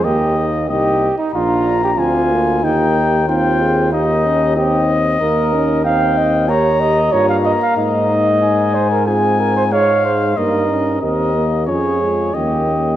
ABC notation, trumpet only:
X:1
M:4/4
L:1/8
Q:1/4=93
K:Ebmix
V:1 name="Trumpet"
e2 e z b2 a2 | g2 g2 e2 e2- | e2 g2 b2 b2- | b z a2 a2 f2 |
e2 e2 d2 e2 |]